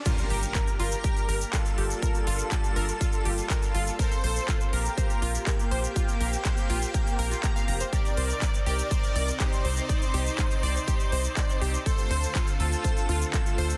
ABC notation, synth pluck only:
X:1
M:4/4
L:1/16
Q:1/4=122
K:Gm
V:1 name="Synth pluck"
F z G z B z F z G z B z F z G z | B z F z G z B z F z G z B z F z | B z c z F z B z c z F z B z c z | F z B z c z F z B z B F b f b c |
G z c z d z G z c z d z G z c z | d z G z c z d z G z c z d z G z | A z c z F z A z c z F z A z c z |]